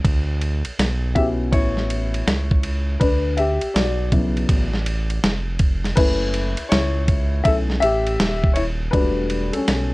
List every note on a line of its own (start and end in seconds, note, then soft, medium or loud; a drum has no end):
0.05 0.63 D2 loud
0.05 kick loud
0.05 ride medium
0.41 ride soft
0.65 0.71 B1 soft
0.65 ride soft
0.79 1.54 B1 loud
0.79 snare medium
0.79 hi-hat pedal medium
0.79 ride medium
1.15 2.23 B3 soft
1.15 2.23 C#4 medium
1.15 1.52 E4 medium
1.15 2.23 F#4 medium
1.15 1.25 G4 medium
1.15 1.24 E5 loud
1.15 kick medium
1.15 ride medium
1.52 2.23 A1 medium
1.52 2.97 E4 medium
1.52 2.96 C#5 medium
1.52 kick medium
1.52 ride medium
1.77 snare soft
1.90 ride medium
2.14 ride soft
2.27 2.97 C#2 medium
2.27 snare loud
2.27 hi-hat pedal soft
2.27 ride medium
2.51 kick medium
2.63 ride medium
3.00 3.59 D2 loud
3.00 3.36 D4 medium
3.00 3.38 B4 medium
3.00 kick loud
3.00 ride medium
3.37 3.73 G4 medium
3.37 3.72 E5 medium
3.37 ride soft
3.61 3.68 B1 soft
3.61 ride soft
3.74 4.46 B1 medium
3.74 5.20 F#4 medium
3.74 5.19 D5 medium
3.74 snare medium
3.74 hi-hat pedal medium
3.74 ride medium
4.12 4.66 C#3 soft
4.12 4.66 F#3 medium
4.12 4.66 B3 soft
4.12 4.66 E4 medium
4.12 kick medium
4.12 ride medium
4.37 ride soft
4.49 5.19 A1 medium
4.49 kick medium
4.49 ride medium
4.73 snare soft
4.86 ride medium
5.10 ride soft
5.24 5.94 F1 medium
5.24 snare loud
5.24 hi-hat pedal soft
5.24 ride medium
5.59 kick medium
5.59 ride medium
5.84 snare soft
5.84 ride soft
5.96 6.55 F#1 loud
5.96 6.50 A3 medium
5.96 6.51 C#4 medium
5.96 6.68 E4 medium
5.96 6.66 B4 medium
5.96 kick loud
5.96 crash loud
5.96 ride medium
6.34 ride soft
6.57 6.64 C#2 soft
6.57 ride soft
6.69 7.42 C#2 loud
6.69 7.41 E4 medium
6.69 7.46 C#5 medium
6.69 snare medium
6.69 hi-hat pedal medium
6.69 ride medium
7.08 kick medium
7.08 ride medium
7.44 7.80 B1 loud
7.44 7.79 A3 soft
7.44 7.79 C#4 soft
7.44 7.79 E4 medium
7.44 7.55 A4 medium
7.44 7.52 E5 loud
7.44 kick medium
7.44 ride medium
7.70 snare soft
7.80 8.18 A1 medium
7.80 8.53 G4 medium
7.80 8.51 E5 loud
7.80 ride medium
8.07 ride soft
8.20 8.90 D#1 medium
8.20 snare loud
8.20 hi-hat pedal soft
8.20 ride medium
8.44 kick medium
8.53 8.65 E4 medium
8.53 8.62 C#5 medium
8.53 ride medium
8.91 9.52 E1 loud
8.91 9.94 G3 medium
8.91 9.94 A3 soft
8.91 9.51 D4 medium
8.91 9.94 F#4 medium
8.91 9.49 B4 medium
8.91 kick loud
8.91 ride medium
9.30 ride soft
9.52 9.60 B1 soft
9.52 9.94 C#4 medium
9.52 9.94 A4 medium
9.52 ride soft
9.68 9.94 B1 medium
9.68 snare medium
9.68 hi-hat pedal medium
9.68 ride medium